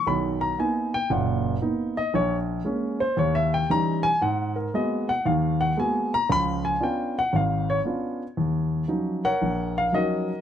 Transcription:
grand piano
0.07 B1 D#3 B5
0.41 A#5
0.58 A#3 B3 D#4 G#5
0.94 G5
1.10 F#1 A#2 F#5
1.61 A#3 B3 D#4
1.97 D#5
2.14 A#1 C#5
2.65 G#3 A#3 C#4
3.00 C5
3.17 D#2 C#5
3.35 E5
3.54 G5
3.70 E3 G3 C#4 D#4 A#5
4.03 G#5
4.21 G#2 F#5
4.56 A#4
4.74 G#3 A#3 B3 F#4 D#5
5.09 F#5
5.26 D#2 D#3 F5
5.61 F#5
5.77 G#3 A#3 B3 F#4 G#5
6.14 A#5
6.29 C#2 F3 B5
6.65 G#5
6.80 B3 C#4 D4 F4 G5
7.19 F#5
7.33 G#1 G#2 F5
7.70 C#5
7.85 B3 C#4 D4 F4
8.37 D#2
8.88 F3 F#3 C#4 D#4
9.25 A#4 C#5 F#5
9.42 A#1
9.78 F5
9.92 F3 F#3 C#4 D#4 F#4 A#4 D#5

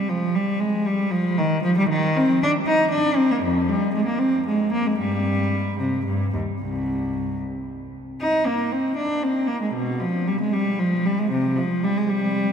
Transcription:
cello
Already playing: G3
0.09 F3
0.35 G3
0.60 G#3
0.86 G3
1.11 F3
1.38 D#3
1.63 F3
1.78 G3
1.90 D#3
2.17 C4
2.43 D4
2.67 D#4
2.92 D4
3.16 C4
3.32 A#3
3.43 F2
3.69 G3
3.94 G#3
4.06 A#3
4.19 C4
4.47 G#3
4.73 A#3
4.87 G#3
4.99 G2 G3
5.80 C3
6.06 G2
6.34 D#2
6.61 C2
8.21 D#4
8.46 A#3
8.72 C4
8.97 D4
9.23 C4
9.48 A#3
9.62 G#3
9.74 B2
10.00 F3
10.28 G3
10.41 G#3
10.53 G3
10.79 F3
11.05 G3
11.19 G#3
11.31 C3
11.57 F3
11.84 G3
11.97 G#3
12.09 G3

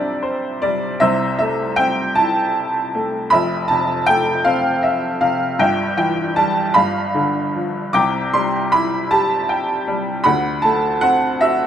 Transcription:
upright piano
Already playing: C2 C3 G3 C4 D4 D5 E5 G5 A5
0.22 C5
0.62 G3 D5
1.00 C2 C3 C5 E5
1.39 A3 E5
1.76 C4 G5
2.15 E4 A5
2.95 A3
3.30 F1 F2 E5 B5
3.68 C3 A5
4.06 A3 G5
4.45 C4 F5
4.83 E5
5.21 C3 F5
5.59 G1 G2 E5 G5
5.97 E3 G5
6.36 G3 A5
6.74 G1 G2 F5 B5
7.15 D3
7.54 F3
7.93 C2 C3 G5 D6
8.33 G3 C6
8.72 E4 B5
9.11 G4 A5
9.49 G5
9.87 G3
10.24 D2 D3 F#5 B5
10.62 A3 A5
11.01 C4 F#5
11.41 F#4 E5

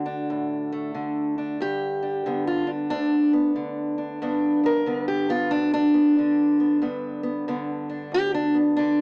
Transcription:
steel-string acoustic guitar
Already playing: D2 D3 F#4
0.06 D4
0.30 A2
0.72 A3
0.95 D3
1.38 D4
1.60 G2 G4
2.02 D4
2.26 D3 B3
2.47 F4
2.67 D4
2.90 D2 D4
3.33 B3
3.56 D3
3.98 D4
4.22 G2 B3 D4
4.64 B3 A#4
4.86 D3 B3
5.08 G4
5.29 B3 F4
5.51 D2 D4
5.74 D4
5.94 B3
6.19 D3
6.60 B3
6.82 G2 B3
7.23 B3
7.48 D3 B3
7.89 D4
8.12 D2 G4
8.34 D4
8.54 B3
8.77 D3 D4

